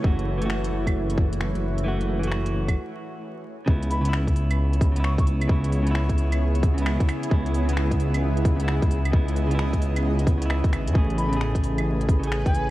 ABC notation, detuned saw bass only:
X:1
M:4/4
L:1/16
Q:"Swing 16ths" 1/4=132
K:C#m
V:1 name="Detuned saw bass" clef=bass
F,,,6 F,,,6- F,,, F,,,3 | F,,,6 F,,,2 z8 | C,,6 C,,6- C,, C,,3 | C,,6 C,,6- C,, z3 |
C,,6 C,,6- C,, C,,3 | C,,6 C,,6- C,, z G,,, F,, | A,,,6 A,,,6- A,,, A,,,3 |]